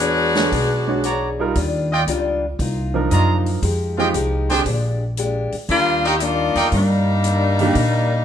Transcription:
Already playing: E2 G#3 D4 F#4 B4
0.00 E3 D4 G#4 C#5, closed hi-hat
0.35 G#3 D4 F#4 C#5, snare, open hi-hat
0.52 B1 E3 D4 G#4 C#5, kick, open hi-hat
0.87 G#3 D4 F#4 C#5
1.03 E3 D4 F#4 G#4 C#5 D5 A#5, closed hi-hat
1.39 G3 D#4 F4 A#4
1.55 D#2 D#3 G3 D4 F4, kick, open hi-hat
1.91 F4 D5 D#5 G5
2.07 C#2 D#3 G3 D4 F4, closed hi-hat
2.59 C2 C3 A#3 D#4 F4, kick, open hi-hat
2.94 F3 D4 D#4 A#4
3.10 F#2 C3 A#3 D#4 F4 D5 D#5 A#5, closed hi-hat
3.46 open hi-hat
3.62 F2 F3 G#3 D#4 G4, kick, open hi-hat
3.97 F3 G#3 D#4 F4 G4 G#4 D#5 G5
4.14 C2 F3 G#3 D#4 G4, closed hi-hat
4.49 D3 G#3 C4 D4 G4 G#4 C5 G5, open hi-hat
4.66 A#1 A#2 G#3 D4 G4, kick, open hi-hat
5.17 A#2 G#3 D4 G4, closed hi-hat
5.52 muted upright bass stroke, open hi-hat
5.69 D#2 D#3 G3 A#3 D4 F4, kick, open hi-hat
6.04 D#3 A#3 D4 D#4 G4 A#4 D5 G5
6.18 D#3 G3 A#3 E4, closed hi-hat
6.22 A#3 D4 D#4 F4
6.55 E2 D#4 A#4 D5 G5, open hi-hat
6.72 G2 D#3 G3 A#3 D4 D#4, kick, open hi-hat
7.24 D#3 G3 A#3 D4, closed hi-hat
7.59 D#3 A#3 D4 G4, open hi-hat
7.75 A#2 D#3 G3 A#3 D4, kick, open hi-hat

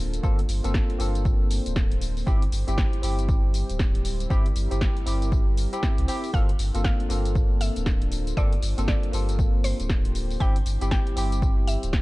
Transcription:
Already playing: D1 A#3 C4 D4 F4 A4 C5
0.14 closed hi-hat, tambourine
0.23 G1 A#3 C4 F4 A4, kick, tambourine
0.39 closed hi-hat
0.49 G1, open hi-hat, tambourine
0.64 G1 A#3 C4 F4 A4, closed hi-hat, tambourine
0.74 kick, snare, tambourine
0.90 closed hi-hat
0.99 G1 A#3 C4 F4 A4, open hi-hat, tambourine
1.15 closed hi-hat, tambourine
1.25 kick, tambourine
1.51 open hi-hat, tambourine
1.66 D1, closed hi-hat, tambourine
1.76 kick, snare, tambourine
1.92 closed hi-hat
2.01 open hi-hat, tambourine
2.17 open hi-hat, tambourine
2.26 G1 G3 C4 E4 G4, kick, tambourine
2.42 closed hi-hat
2.52 G1, open hi-hat, tambourine
2.67 G1 C4 E4 G4, closed hi-hat, tambourine
2.78 kick, snare, tambourine
2.93 closed hi-hat
3.02 G1 C4 E4 G4, open hi-hat, tambourine
3.19 closed hi-hat, tambourine
3.29 kick, tambourine
3.54 open hi-hat, tambourine
3.69 D1, closed hi-hat, tambourine
3.79 kick, snare, tambourine
3.95 closed hi-hat
4.05 open hi-hat, tambourine
4.20 closed hi-hat, tambourine
4.30 G1 C4 E4 G4 A#4, kick, tambourine
4.46 closed hi-hat
4.56 G1, open hi-hat, tambourine
4.71 G1 C4 E4 G4, closed hi-hat, tambourine
4.81 kick, snare, tambourine
4.97 closed hi-hat
5.06 G1 C4 E4 G4, open hi-hat, tambourine
5.22 closed hi-hat, tambourine
5.32 kick, tambourine
5.57 open hi-hat, tambourine
5.72 C4 E4 G4, closed hi-hat, tambourine
5.83 kick, snare, tambourine
5.98 C2, closed hi-hat
6.08 C4 E4 G4, open hi-hat, tambourine
6.24 open hi-hat, tambourine
6.33 G1 A#3 C4 D4 F4 A4 C5 F5, kick, tambourine
6.49 closed hi-hat
6.59 G1, open hi-hat, tambourine
6.74 G1 A#3 C4 F4 A4, closed hi-hat, tambourine
6.84 F5, kick, snare, tambourine
7.00 closed hi-hat
7.09 G1 A#3 C4 F4 A4, open hi-hat, tambourine
7.25 closed hi-hat, tambourine
7.35 kick, tambourine
7.61 E5, open hi-hat, tambourine
7.76 D1, closed hi-hat, tambourine
7.86 kick, snare, tambourine
8.02 closed hi-hat
8.12 open hi-hat, tambourine
8.27 closed hi-hat, tambourine
8.37 G1 A#3 C4 F4 G4 A4 D5, kick, tambourine
8.53 closed hi-hat
8.62 G1, open hi-hat, tambourine
8.77 G1 A#3 C4 F4 A4, closed hi-hat, tambourine
8.88 D5, kick, snare, tambourine
9.03 closed hi-hat
9.12 G1 A#3 C4 F4 A4, open hi-hat, tambourine
9.29 closed hi-hat, tambourine
9.39 kick, tambourine
9.64 C5, open hi-hat, tambourine
9.80 D1, closed hi-hat, tambourine
9.90 kick, snare, tambourine
10.05 closed hi-hat
10.15 open hi-hat, tambourine
10.31 open hi-hat, tambourine
10.40 G1 G3 C4 E4 G4 G5, kick, tambourine
10.56 closed hi-hat
10.66 G1, open hi-hat, tambourine
10.81 G1 C4 E4 G4, closed hi-hat, tambourine
10.91 G5, kick, snare, tambourine
11.07 closed hi-hat
11.16 G1 C4 E4 G4, open hi-hat, tambourine
11.32 closed hi-hat, tambourine
11.42 kick, tambourine
11.67 E5, open hi-hat, tambourine
11.83 D1, closed hi-hat, tambourine
11.93 kick, snare, tambourine

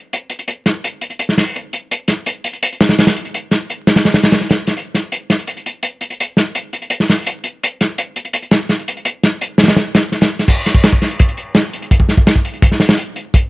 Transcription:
0.13 closed hi-hat
0.30 closed hi-hat
0.39 closed hi-hat
0.48 closed hi-hat
0.66 snare, closed hi-hat
0.84 closed hi-hat
1.01 closed hi-hat
1.10 closed hi-hat
1.19 closed hi-hat
1.29 snare
1.38 snare, open hi-hat
1.56 closed hi-hat
1.73 closed hi-hat
1.91 closed hi-hat
2.08 snare, closed hi-hat
2.26 closed hi-hat
2.44 closed hi-hat
2.53 closed hi-hat
2.63 closed hi-hat
2.73 closed hi-hat
2.80 snare, closed hi-hat
2.89 snare, closed hi-hat
2.98 snare, closed hi-hat
3.07 snare, closed hi-hat
3.16 closed hi-hat
3.25 closed hi-hat
3.34 closed hi-hat
3.51 snare, closed hi-hat
3.70 closed hi-hat
3.87 snare, closed hi-hat
3.96 snare, closed hi-hat
4.05 snare, closed hi-hat
4.14 snare, closed hi-hat
4.23 snare, closed hi-hat
4.31 snare, closed hi-hat
4.41 snare, closed hi-hat
4.49 snare, closed hi-hat
4.67 snare, closed hi-hat
4.77 closed hi-hat
4.94 snare, closed hi-hat
5.12 closed hi-hat
5.30 snare, closed hi-hat
5.39 closed hi-hat
5.47 closed hi-hat
5.57 closed hi-hat
5.66 closed hi-hat
5.83 closed hi-hat
6.01 closed hi-hat
6.10 closed hi-hat
6.20 closed hi-hat
6.37 snare, closed hi-hat
6.55 closed hi-hat
6.73 closed hi-hat
6.82 closed hi-hat
6.90 closed hi-hat
7.00 snare
7.08 snare, open hi-hat
7.26 closed hi-hat
7.44 closed hi-hat
7.63 closed hi-hat
7.81 snare, closed hi-hat
7.98 closed hi-hat
8.16 closed hi-hat
8.25 closed hi-hat
8.33 closed hi-hat
8.42 closed hi-hat
8.51 snare, closed hi-hat
8.69 snare, closed hi-hat
8.79 closed hi-hat
8.88 closed hi-hat
8.97 closed hi-hat
9.05 closed hi-hat
9.23 snare, closed hi-hat
9.41 closed hi-hat
9.58 snare, closed hi-hat
9.63 snare, closed hi-hat
9.67 snare, closed hi-hat
9.77 snare, closed hi-hat
9.95 snare, closed hi-hat
10.12 snare, closed hi-hat
10.21 snare, closed hi-hat
10.39 snare, closed hi-hat
10.48 kick, closed hi-hat, crash
10.66 snare, closed hi-hat
10.75 kick
10.84 snare, closed hi-hat
10.93 kick
11.02 snare, closed hi-hat
11.11 closed hi-hat
11.19 kick, closed hi-hat
11.29 closed hi-hat
11.37 closed hi-hat
11.55 snare, closed hi-hat
11.73 closed hi-hat
11.82 closed hi-hat
11.91 kick, closed hi-hat
12.00 kick
12.09 snare, closed hi-hat
12.17 kick
12.27 snare, closed hi-hat
12.36 kick
12.45 closed hi-hat
12.53 closed hi-hat
12.62 kick, closed hi-hat
12.72 snare
12.80 snare, open hi-hat
12.89 snare
12.98 closed hi-hat
13.16 closed hi-hat
13.34 kick, closed hi-hat

